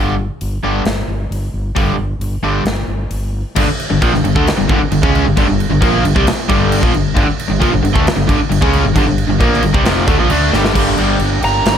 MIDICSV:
0, 0, Header, 1, 8, 480
1, 0, Start_track
1, 0, Key_signature, -2, "minor"
1, 0, Tempo, 450113
1, 1879, Time_signature, 4, 2, 24, 8
1, 12560, End_track
2, 0, Start_track
2, 0, Title_t, "Lead electric guitar"
2, 0, Program_c, 0, 29
2, 12205, Note_on_c, 0, 82, 87
2, 12560, Note_off_c, 0, 82, 0
2, 12560, End_track
3, 0, Start_track
3, 0, Title_t, "Overdriven electric guitar"
3, 0, Program_c, 1, 29
3, 11471, Note_on_c, 1, 58, 92
3, 11473, Note_on_c, 1, 62, 78
3, 11481, Note_on_c, 1, 67, 94
3, 12162, Note_off_c, 1, 67, 0
3, 12166, Note_on_c, 1, 67, 82
3, 12176, Note_off_c, 1, 62, 0
3, 12180, Note_on_c, 1, 62, 74
3, 12182, Note_off_c, 1, 58, 0
3, 12187, Note_on_c, 1, 58, 71
3, 12199, Note_on_c, 1, 50, 77
3, 12199, Note_on_c, 1, 55, 72
3, 12207, Note_on_c, 1, 43, 64
3, 12560, Note_off_c, 1, 43, 0
3, 12560, Note_off_c, 1, 50, 0
3, 12560, Note_off_c, 1, 55, 0
3, 12560, Note_off_c, 1, 58, 0
3, 12560, Note_off_c, 1, 62, 0
3, 12560, Note_off_c, 1, 67, 0
3, 12560, End_track
4, 0, Start_track
4, 0, Title_t, "Overdriven electric guitar"
4, 0, Program_c, 2, 29
4, 0, Note_on_c, 2, 43, 82
4, 0, Note_on_c, 2, 50, 86
4, 0, Note_on_c, 2, 55, 75
4, 140, Note_off_c, 2, 43, 0
4, 142, Note_off_c, 2, 50, 0
4, 145, Note_off_c, 2, 55, 0
4, 676, Note_on_c, 2, 43, 77
4, 682, Note_on_c, 2, 55, 103
4, 684, Note_on_c, 2, 50, 85
4, 868, Note_off_c, 2, 43, 0
4, 872, Note_off_c, 2, 50, 0
4, 872, Note_off_c, 2, 55, 0
4, 1870, Note_on_c, 2, 43, 74
4, 1879, Note_on_c, 2, 55, 81
4, 1880, Note_on_c, 2, 50, 81
4, 2067, Note_off_c, 2, 43, 0
4, 2071, Note_off_c, 2, 55, 0
4, 2072, Note_off_c, 2, 50, 0
4, 2591, Note_on_c, 2, 43, 77
4, 2597, Note_on_c, 2, 50, 96
4, 2601, Note_on_c, 2, 55, 88
4, 2789, Note_off_c, 2, 43, 0
4, 2792, Note_off_c, 2, 50, 0
4, 2794, Note_off_c, 2, 55, 0
4, 3791, Note_on_c, 2, 43, 90
4, 3795, Note_on_c, 2, 50, 95
4, 3910, Note_off_c, 2, 43, 0
4, 3912, Note_off_c, 2, 50, 0
4, 4159, Note_on_c, 2, 43, 66
4, 4163, Note_on_c, 2, 50, 74
4, 4274, Note_off_c, 2, 50, 0
4, 4278, Note_on_c, 2, 46, 93
4, 4281, Note_off_c, 2, 43, 0
4, 4288, Note_on_c, 2, 53, 118
4, 4393, Note_off_c, 2, 46, 0
4, 4398, Note_off_c, 2, 53, 0
4, 4402, Note_on_c, 2, 43, 57
4, 4412, Note_on_c, 2, 50, 64
4, 4509, Note_off_c, 2, 43, 0
4, 4512, Note_off_c, 2, 50, 0
4, 4522, Note_on_c, 2, 43, 63
4, 4525, Note_on_c, 2, 50, 68
4, 4639, Note_off_c, 2, 50, 0
4, 4642, Note_off_c, 2, 43, 0
4, 4652, Note_on_c, 2, 50, 86
4, 4655, Note_on_c, 2, 57, 87
4, 4760, Note_off_c, 2, 50, 0
4, 4761, Note_off_c, 2, 57, 0
4, 4888, Note_on_c, 2, 43, 58
4, 4899, Note_on_c, 2, 50, 64
4, 5001, Note_off_c, 2, 43, 0
4, 5010, Note_off_c, 2, 50, 0
4, 5013, Note_on_c, 2, 43, 89
4, 5022, Note_on_c, 2, 50, 103
4, 5120, Note_off_c, 2, 43, 0
4, 5125, Note_off_c, 2, 50, 0
4, 5248, Note_on_c, 2, 43, 65
4, 5252, Note_on_c, 2, 50, 67
4, 5361, Note_off_c, 2, 50, 0
4, 5365, Note_off_c, 2, 43, 0
4, 5366, Note_on_c, 2, 49, 92
4, 5371, Note_on_c, 2, 56, 100
4, 5374, Note_on_c, 2, 61, 117
4, 5596, Note_off_c, 2, 49, 0
4, 5598, Note_off_c, 2, 56, 0
4, 5598, Note_on_c, 2, 43, 61
4, 5600, Note_off_c, 2, 61, 0
4, 5603, Note_on_c, 2, 50, 60
4, 5712, Note_off_c, 2, 43, 0
4, 5714, Note_off_c, 2, 50, 0
4, 5724, Note_on_c, 2, 43, 78
4, 5727, Note_on_c, 2, 50, 88
4, 5835, Note_off_c, 2, 43, 0
4, 5837, Note_off_c, 2, 50, 0
4, 5847, Note_on_c, 2, 50, 76
4, 5848, Note_on_c, 2, 43, 68
4, 6036, Note_off_c, 2, 43, 0
4, 6036, Note_off_c, 2, 50, 0
4, 6078, Note_on_c, 2, 43, 68
4, 6083, Note_on_c, 2, 50, 70
4, 6190, Note_off_c, 2, 50, 0
4, 6194, Note_on_c, 2, 46, 104
4, 6199, Note_off_c, 2, 43, 0
4, 6204, Note_on_c, 2, 53, 92
4, 6207, Note_on_c, 2, 58, 122
4, 6429, Note_off_c, 2, 46, 0
4, 6434, Note_off_c, 2, 53, 0
4, 6436, Note_off_c, 2, 58, 0
4, 6444, Note_on_c, 2, 43, 75
4, 6445, Note_on_c, 2, 50, 68
4, 6561, Note_off_c, 2, 43, 0
4, 6561, Note_off_c, 2, 50, 0
4, 6565, Note_on_c, 2, 48, 84
4, 6567, Note_on_c, 2, 55, 94
4, 6675, Note_off_c, 2, 48, 0
4, 6675, Note_off_c, 2, 55, 0
4, 6918, Note_on_c, 2, 43, 92
4, 6923, Note_on_c, 2, 50, 98
4, 6929, Note_on_c, 2, 55, 109
4, 7259, Note_off_c, 2, 50, 0
4, 7263, Note_on_c, 2, 46, 97
4, 7264, Note_off_c, 2, 55, 0
4, 7269, Note_on_c, 2, 53, 104
4, 7270, Note_off_c, 2, 43, 0
4, 7383, Note_off_c, 2, 46, 0
4, 7383, Note_on_c, 2, 43, 64
4, 7386, Note_off_c, 2, 53, 0
4, 7390, Note_on_c, 2, 50, 78
4, 7582, Note_off_c, 2, 43, 0
4, 7585, Note_off_c, 2, 50, 0
4, 7618, Note_on_c, 2, 43, 81
4, 7625, Note_on_c, 2, 50, 92
4, 7724, Note_off_c, 2, 43, 0
4, 7744, Note_off_c, 2, 50, 0
4, 7977, Note_on_c, 2, 43, 65
4, 7979, Note_on_c, 2, 50, 73
4, 8096, Note_off_c, 2, 50, 0
4, 8100, Note_on_c, 2, 46, 104
4, 8106, Note_off_c, 2, 43, 0
4, 8108, Note_on_c, 2, 53, 121
4, 8220, Note_on_c, 2, 43, 57
4, 8221, Note_off_c, 2, 46, 0
4, 8224, Note_off_c, 2, 53, 0
4, 8228, Note_on_c, 2, 50, 70
4, 8333, Note_off_c, 2, 43, 0
4, 8335, Note_off_c, 2, 50, 0
4, 8345, Note_on_c, 2, 43, 64
4, 8348, Note_on_c, 2, 50, 64
4, 8453, Note_off_c, 2, 50, 0
4, 8466, Note_on_c, 2, 50, 88
4, 8470, Note_off_c, 2, 43, 0
4, 8473, Note_on_c, 2, 57, 95
4, 8583, Note_off_c, 2, 50, 0
4, 8586, Note_off_c, 2, 57, 0
4, 8706, Note_on_c, 2, 43, 63
4, 8707, Note_on_c, 2, 50, 62
4, 8824, Note_off_c, 2, 43, 0
4, 8831, Note_off_c, 2, 50, 0
4, 8837, Note_on_c, 2, 43, 97
4, 8842, Note_on_c, 2, 50, 94
4, 8938, Note_off_c, 2, 43, 0
4, 8951, Note_off_c, 2, 50, 0
4, 9062, Note_on_c, 2, 50, 82
4, 9065, Note_on_c, 2, 43, 64
4, 9182, Note_off_c, 2, 50, 0
4, 9187, Note_on_c, 2, 49, 93
4, 9189, Note_off_c, 2, 43, 0
4, 9190, Note_on_c, 2, 56, 102
4, 9195, Note_on_c, 2, 61, 113
4, 9423, Note_off_c, 2, 49, 0
4, 9424, Note_off_c, 2, 56, 0
4, 9427, Note_off_c, 2, 61, 0
4, 9440, Note_on_c, 2, 43, 58
4, 9441, Note_on_c, 2, 50, 66
4, 9544, Note_off_c, 2, 43, 0
4, 9547, Note_off_c, 2, 50, 0
4, 9557, Note_on_c, 2, 43, 93
4, 9560, Note_on_c, 2, 50, 98
4, 9668, Note_off_c, 2, 43, 0
4, 9669, Note_off_c, 2, 50, 0
4, 9680, Note_on_c, 2, 50, 71
4, 9681, Note_on_c, 2, 43, 67
4, 9868, Note_off_c, 2, 43, 0
4, 9868, Note_off_c, 2, 50, 0
4, 9908, Note_on_c, 2, 43, 67
4, 9914, Note_on_c, 2, 50, 62
4, 10020, Note_off_c, 2, 50, 0
4, 10024, Note_on_c, 2, 46, 96
4, 10026, Note_on_c, 2, 53, 111
4, 10029, Note_on_c, 2, 58, 116
4, 10030, Note_off_c, 2, 43, 0
4, 10259, Note_on_c, 2, 43, 70
4, 10261, Note_off_c, 2, 46, 0
4, 10262, Note_off_c, 2, 53, 0
4, 10263, Note_off_c, 2, 58, 0
4, 10265, Note_on_c, 2, 50, 69
4, 10370, Note_off_c, 2, 50, 0
4, 10375, Note_on_c, 2, 48, 96
4, 10381, Note_on_c, 2, 55, 94
4, 10385, Note_off_c, 2, 43, 0
4, 10496, Note_off_c, 2, 48, 0
4, 10498, Note_on_c, 2, 41, 89
4, 10499, Note_off_c, 2, 55, 0
4, 10509, Note_on_c, 2, 48, 86
4, 10510, Note_on_c, 2, 53, 101
4, 10737, Note_off_c, 2, 41, 0
4, 10739, Note_off_c, 2, 48, 0
4, 10743, Note_on_c, 2, 50, 95
4, 10744, Note_off_c, 2, 53, 0
4, 10751, Note_on_c, 2, 57, 99
4, 10860, Note_off_c, 2, 50, 0
4, 10864, Note_off_c, 2, 57, 0
4, 10866, Note_on_c, 2, 46, 93
4, 10870, Note_on_c, 2, 53, 104
4, 10981, Note_off_c, 2, 46, 0
4, 10983, Note_off_c, 2, 53, 0
4, 10992, Note_on_c, 2, 50, 101
4, 10995, Note_on_c, 2, 57, 97
4, 11000, Note_on_c, 2, 62, 101
4, 11214, Note_off_c, 2, 50, 0
4, 11226, Note_off_c, 2, 57, 0
4, 11227, Note_on_c, 2, 43, 82
4, 11227, Note_on_c, 2, 50, 96
4, 11228, Note_off_c, 2, 62, 0
4, 11232, Note_on_c, 2, 55, 110
4, 11446, Note_off_c, 2, 43, 0
4, 11454, Note_off_c, 2, 50, 0
4, 11458, Note_on_c, 2, 43, 81
4, 11459, Note_off_c, 2, 55, 0
4, 11467, Note_on_c, 2, 50, 74
4, 11472, Note_on_c, 2, 55, 83
4, 11656, Note_off_c, 2, 43, 0
4, 11660, Note_off_c, 2, 50, 0
4, 11663, Note_off_c, 2, 55, 0
4, 11702, Note_on_c, 2, 43, 93
4, 11710, Note_on_c, 2, 50, 95
4, 11714, Note_on_c, 2, 55, 107
4, 11898, Note_off_c, 2, 43, 0
4, 11902, Note_off_c, 2, 50, 0
4, 11904, Note_off_c, 2, 55, 0
4, 12560, End_track
5, 0, Start_track
5, 0, Title_t, "Fingered electric bass"
5, 0, Program_c, 3, 33
5, 0, Note_on_c, 3, 31, 96
5, 271, Note_off_c, 3, 31, 0
5, 443, Note_on_c, 3, 31, 77
5, 599, Note_off_c, 3, 31, 0
5, 682, Note_on_c, 3, 31, 88
5, 838, Note_off_c, 3, 31, 0
5, 909, Note_on_c, 3, 31, 77
5, 1070, Note_off_c, 3, 31, 0
5, 1151, Note_on_c, 3, 31, 86
5, 1311, Note_off_c, 3, 31, 0
5, 1394, Note_on_c, 3, 31, 79
5, 1554, Note_off_c, 3, 31, 0
5, 1639, Note_on_c, 3, 31, 80
5, 1797, Note_off_c, 3, 31, 0
5, 1877, Note_on_c, 3, 31, 91
5, 2036, Note_off_c, 3, 31, 0
5, 2104, Note_on_c, 3, 31, 76
5, 2268, Note_off_c, 3, 31, 0
5, 2340, Note_on_c, 3, 31, 87
5, 2505, Note_off_c, 3, 31, 0
5, 2588, Note_on_c, 3, 31, 78
5, 2750, Note_off_c, 3, 31, 0
5, 2826, Note_on_c, 3, 31, 81
5, 2989, Note_off_c, 3, 31, 0
5, 3069, Note_on_c, 3, 31, 83
5, 3231, Note_off_c, 3, 31, 0
5, 3312, Note_on_c, 3, 31, 84
5, 3631, Note_off_c, 3, 31, 0
5, 3802, Note_on_c, 3, 31, 103
5, 3914, Note_off_c, 3, 31, 0
5, 4173, Note_on_c, 3, 31, 75
5, 4280, Note_off_c, 3, 31, 0
5, 4288, Note_on_c, 3, 34, 104
5, 4397, Note_off_c, 3, 34, 0
5, 4408, Note_on_c, 3, 31, 78
5, 4517, Note_off_c, 3, 31, 0
5, 4529, Note_on_c, 3, 31, 82
5, 4638, Note_off_c, 3, 31, 0
5, 4647, Note_on_c, 3, 38, 97
5, 4756, Note_off_c, 3, 38, 0
5, 4892, Note_on_c, 3, 31, 87
5, 4999, Note_off_c, 3, 31, 0
5, 5004, Note_on_c, 3, 31, 104
5, 5114, Note_off_c, 3, 31, 0
5, 5244, Note_on_c, 3, 31, 73
5, 5354, Note_off_c, 3, 31, 0
5, 5365, Note_on_c, 3, 37, 93
5, 5586, Note_off_c, 3, 37, 0
5, 5611, Note_on_c, 3, 31, 85
5, 5718, Note_off_c, 3, 31, 0
5, 5725, Note_on_c, 3, 31, 95
5, 5830, Note_off_c, 3, 31, 0
5, 5836, Note_on_c, 3, 31, 82
5, 6061, Note_off_c, 3, 31, 0
5, 6078, Note_on_c, 3, 31, 81
5, 6190, Note_off_c, 3, 31, 0
5, 6206, Note_on_c, 3, 34, 100
5, 6426, Note_off_c, 3, 34, 0
5, 6432, Note_on_c, 3, 31, 87
5, 6547, Note_off_c, 3, 31, 0
5, 6568, Note_on_c, 3, 36, 96
5, 6675, Note_off_c, 3, 36, 0
5, 6923, Note_on_c, 3, 31, 107
5, 7255, Note_off_c, 3, 31, 0
5, 7285, Note_on_c, 3, 34, 93
5, 7384, Note_off_c, 3, 34, 0
5, 7390, Note_on_c, 3, 31, 85
5, 7616, Note_off_c, 3, 31, 0
5, 7645, Note_on_c, 3, 31, 106
5, 7747, Note_off_c, 3, 31, 0
5, 7985, Note_on_c, 3, 31, 77
5, 8102, Note_off_c, 3, 31, 0
5, 8121, Note_on_c, 3, 34, 90
5, 8230, Note_off_c, 3, 34, 0
5, 8235, Note_on_c, 3, 31, 86
5, 8346, Note_off_c, 3, 31, 0
5, 8354, Note_on_c, 3, 31, 88
5, 8466, Note_off_c, 3, 31, 0
5, 8486, Note_on_c, 3, 38, 87
5, 8592, Note_off_c, 3, 38, 0
5, 8718, Note_on_c, 3, 31, 90
5, 8828, Note_off_c, 3, 31, 0
5, 8844, Note_on_c, 3, 31, 109
5, 8948, Note_off_c, 3, 31, 0
5, 9073, Note_on_c, 3, 31, 76
5, 9185, Note_off_c, 3, 31, 0
5, 9194, Note_on_c, 3, 37, 98
5, 9417, Note_off_c, 3, 37, 0
5, 9423, Note_on_c, 3, 31, 78
5, 9539, Note_off_c, 3, 31, 0
5, 9552, Note_on_c, 3, 31, 107
5, 9648, Note_off_c, 3, 31, 0
5, 9655, Note_on_c, 3, 31, 80
5, 9886, Note_off_c, 3, 31, 0
5, 9899, Note_on_c, 3, 31, 77
5, 10017, Note_off_c, 3, 31, 0
5, 10033, Note_on_c, 3, 34, 89
5, 10255, Note_off_c, 3, 34, 0
5, 10265, Note_on_c, 3, 31, 87
5, 10380, Note_off_c, 3, 31, 0
5, 10391, Note_on_c, 3, 36, 96
5, 10492, Note_off_c, 3, 36, 0
5, 10498, Note_on_c, 3, 29, 92
5, 10727, Note_off_c, 3, 29, 0
5, 10750, Note_on_c, 3, 38, 101
5, 10843, Note_off_c, 3, 38, 0
5, 10850, Note_on_c, 3, 34, 96
5, 10966, Note_off_c, 3, 34, 0
5, 10972, Note_on_c, 3, 38, 88
5, 11204, Note_off_c, 3, 38, 0
5, 11214, Note_on_c, 3, 31, 96
5, 11445, Note_off_c, 3, 31, 0
5, 11467, Note_on_c, 3, 31, 88
5, 11685, Note_off_c, 3, 31, 0
5, 11691, Note_on_c, 3, 31, 78
5, 11923, Note_off_c, 3, 31, 0
5, 11934, Note_on_c, 3, 31, 97
5, 12165, Note_off_c, 3, 31, 0
5, 12185, Note_on_c, 3, 31, 97
5, 12410, Note_off_c, 3, 31, 0
5, 12428, Note_on_c, 3, 31, 98
5, 12560, Note_off_c, 3, 31, 0
5, 12560, End_track
6, 0, Start_track
6, 0, Title_t, "Muted fingered electric bass strokes"
6, 3929, Note_on_c, 9, 29, 47
6, 4035, Note_off_c, 9, 29, 0
6, 4774, Note_on_c, 9, 29, 43
6, 4881, Note_off_c, 9, 29, 0
6, 5137, Note_on_c, 9, 29, 43
6, 5243, Note_off_c, 9, 29, 0
6, 6683, Note_on_c, 9, 29, 44
6, 6790, Note_off_c, 9, 29, 0
6, 7753, Note_on_c, 9, 29, 45
6, 7860, Note_off_c, 9, 29, 0
6, 8601, Note_on_c, 9, 29, 41
6, 8708, Note_off_c, 9, 29, 0
6, 8955, Note_on_c, 9, 29, 40
6, 9061, Note_off_c, 9, 29, 0
6, 12560, End_track
7, 0, Start_track
7, 0, Title_t, "Muted overdriven electric guitar strokes"
7, 3921, Note_on_c, 9, 29, 55
7, 4028, Note_off_c, 9, 29, 0
7, 4770, Note_on_c, 9, 29, 54
7, 4877, Note_off_c, 9, 29, 0
7, 5134, Note_on_c, 9, 29, 61
7, 5240, Note_off_c, 9, 29, 0
7, 6669, Note_on_c, 9, 29, 63
7, 6776, Note_off_c, 9, 29, 0
7, 7737, Note_on_c, 9, 29, 58
7, 7843, Note_off_c, 9, 29, 0
7, 8590, Note_on_c, 9, 29, 68
7, 8696, Note_off_c, 9, 29, 0
7, 8951, Note_on_c, 9, 29, 68
7, 9058, Note_off_c, 9, 29, 0
7, 12560, End_track
8, 0, Start_track
8, 0, Title_t, "Drums"
8, 437, Note_on_c, 9, 46, 44
8, 544, Note_off_c, 9, 46, 0
8, 911, Note_on_c, 9, 46, 45
8, 923, Note_on_c, 9, 38, 100
8, 1018, Note_off_c, 9, 46, 0
8, 1029, Note_off_c, 9, 38, 0
8, 1409, Note_on_c, 9, 46, 41
8, 1516, Note_off_c, 9, 46, 0
8, 1882, Note_on_c, 9, 36, 103
8, 1882, Note_on_c, 9, 46, 40
8, 1989, Note_off_c, 9, 36, 0
8, 1989, Note_off_c, 9, 46, 0
8, 2360, Note_on_c, 9, 46, 46
8, 2466, Note_off_c, 9, 46, 0
8, 2832, Note_on_c, 9, 46, 48
8, 2844, Note_on_c, 9, 38, 110
8, 2939, Note_off_c, 9, 46, 0
8, 2951, Note_off_c, 9, 38, 0
8, 3314, Note_on_c, 9, 46, 51
8, 3421, Note_off_c, 9, 46, 0
8, 3798, Note_on_c, 9, 49, 108
8, 3798, Note_on_c, 9, 57, 74
8, 3803, Note_on_c, 9, 36, 100
8, 3905, Note_off_c, 9, 49, 0
8, 3905, Note_off_c, 9, 57, 0
8, 3909, Note_off_c, 9, 36, 0
8, 4048, Note_on_c, 9, 57, 65
8, 4154, Note_off_c, 9, 57, 0
8, 4285, Note_on_c, 9, 57, 75
8, 4287, Note_on_c, 9, 36, 103
8, 4392, Note_off_c, 9, 57, 0
8, 4394, Note_off_c, 9, 36, 0
8, 4419, Note_on_c, 9, 38, 33
8, 4525, Note_off_c, 9, 38, 0
8, 4529, Note_on_c, 9, 57, 62
8, 4635, Note_off_c, 9, 57, 0
8, 4648, Note_on_c, 9, 36, 119
8, 4755, Note_off_c, 9, 36, 0
8, 4770, Note_on_c, 9, 57, 80
8, 4782, Note_on_c, 9, 38, 120
8, 4877, Note_off_c, 9, 57, 0
8, 4889, Note_off_c, 9, 38, 0
8, 5003, Note_on_c, 9, 57, 59
8, 5006, Note_on_c, 9, 36, 117
8, 5109, Note_off_c, 9, 57, 0
8, 5113, Note_off_c, 9, 36, 0
8, 5242, Note_on_c, 9, 57, 75
8, 5349, Note_off_c, 9, 57, 0
8, 5366, Note_on_c, 9, 36, 125
8, 5473, Note_off_c, 9, 36, 0
8, 5493, Note_on_c, 9, 57, 54
8, 5599, Note_off_c, 9, 57, 0
8, 5725, Note_on_c, 9, 57, 79
8, 5728, Note_on_c, 9, 36, 99
8, 5832, Note_off_c, 9, 57, 0
8, 5835, Note_off_c, 9, 36, 0
8, 5973, Note_on_c, 9, 57, 63
8, 6080, Note_off_c, 9, 57, 0
8, 6205, Note_on_c, 9, 57, 75
8, 6207, Note_on_c, 9, 36, 109
8, 6311, Note_off_c, 9, 57, 0
8, 6313, Note_off_c, 9, 36, 0
8, 6451, Note_on_c, 9, 57, 69
8, 6558, Note_off_c, 9, 57, 0
8, 6568, Note_on_c, 9, 36, 111
8, 6675, Note_off_c, 9, 36, 0
8, 6686, Note_on_c, 9, 57, 89
8, 6698, Note_on_c, 9, 38, 125
8, 6793, Note_off_c, 9, 57, 0
8, 6805, Note_off_c, 9, 38, 0
8, 6927, Note_on_c, 9, 36, 124
8, 6928, Note_on_c, 9, 57, 71
8, 7034, Note_off_c, 9, 36, 0
8, 7034, Note_off_c, 9, 57, 0
8, 7166, Note_on_c, 9, 57, 91
8, 7272, Note_off_c, 9, 57, 0
8, 7283, Note_on_c, 9, 36, 112
8, 7390, Note_off_c, 9, 36, 0
8, 7405, Note_on_c, 9, 57, 57
8, 7511, Note_off_c, 9, 57, 0
8, 7641, Note_on_c, 9, 57, 71
8, 7642, Note_on_c, 9, 36, 103
8, 7747, Note_off_c, 9, 57, 0
8, 7749, Note_off_c, 9, 36, 0
8, 7885, Note_on_c, 9, 57, 65
8, 7991, Note_off_c, 9, 57, 0
8, 8122, Note_on_c, 9, 57, 71
8, 8123, Note_on_c, 9, 36, 91
8, 8228, Note_off_c, 9, 57, 0
8, 8229, Note_off_c, 9, 36, 0
8, 8367, Note_on_c, 9, 57, 64
8, 8474, Note_off_c, 9, 57, 0
8, 8484, Note_on_c, 9, 36, 110
8, 8590, Note_off_c, 9, 36, 0
8, 8606, Note_on_c, 9, 57, 83
8, 8618, Note_on_c, 9, 38, 123
8, 8713, Note_off_c, 9, 57, 0
8, 8724, Note_off_c, 9, 38, 0
8, 8841, Note_on_c, 9, 36, 111
8, 8847, Note_on_c, 9, 57, 64
8, 8948, Note_off_c, 9, 36, 0
8, 8954, Note_off_c, 9, 57, 0
8, 9081, Note_on_c, 9, 57, 81
8, 9187, Note_off_c, 9, 57, 0
8, 9195, Note_on_c, 9, 36, 109
8, 9302, Note_off_c, 9, 36, 0
8, 9313, Note_on_c, 9, 57, 58
8, 9420, Note_off_c, 9, 57, 0
8, 9552, Note_on_c, 9, 36, 95
8, 9553, Note_on_c, 9, 57, 79
8, 9658, Note_off_c, 9, 36, 0
8, 9660, Note_off_c, 9, 57, 0
8, 9788, Note_on_c, 9, 57, 62
8, 9895, Note_off_c, 9, 57, 0
8, 10030, Note_on_c, 9, 36, 102
8, 10031, Note_on_c, 9, 57, 73
8, 10137, Note_off_c, 9, 36, 0
8, 10138, Note_off_c, 9, 57, 0
8, 10169, Note_on_c, 9, 38, 34
8, 10265, Note_on_c, 9, 57, 68
8, 10276, Note_off_c, 9, 38, 0
8, 10372, Note_off_c, 9, 57, 0
8, 10391, Note_on_c, 9, 36, 111
8, 10498, Note_off_c, 9, 36, 0
8, 10508, Note_on_c, 9, 57, 87
8, 10519, Note_on_c, 9, 38, 114
8, 10614, Note_off_c, 9, 57, 0
8, 10626, Note_off_c, 9, 38, 0
8, 10743, Note_on_c, 9, 57, 69
8, 10747, Note_on_c, 9, 36, 124
8, 10849, Note_off_c, 9, 57, 0
8, 10853, Note_off_c, 9, 36, 0
8, 10981, Note_on_c, 9, 57, 87
8, 11088, Note_off_c, 9, 57, 0
8, 11233, Note_on_c, 9, 38, 64
8, 11340, Note_off_c, 9, 38, 0
8, 11354, Note_on_c, 9, 38, 91
8, 11461, Note_off_c, 9, 38, 0
8, 11468, Note_on_c, 9, 36, 96
8, 11469, Note_on_c, 9, 49, 105
8, 11469, Note_on_c, 9, 57, 76
8, 11575, Note_off_c, 9, 36, 0
8, 11576, Note_off_c, 9, 49, 0
8, 11576, Note_off_c, 9, 57, 0
8, 11703, Note_on_c, 9, 57, 55
8, 11810, Note_off_c, 9, 57, 0
8, 11938, Note_on_c, 9, 57, 75
8, 12045, Note_off_c, 9, 57, 0
8, 12184, Note_on_c, 9, 57, 67
8, 12291, Note_off_c, 9, 57, 0
8, 12429, Note_on_c, 9, 57, 84
8, 12441, Note_on_c, 9, 38, 108
8, 12536, Note_off_c, 9, 57, 0
8, 12548, Note_off_c, 9, 38, 0
8, 12560, End_track
0, 0, End_of_file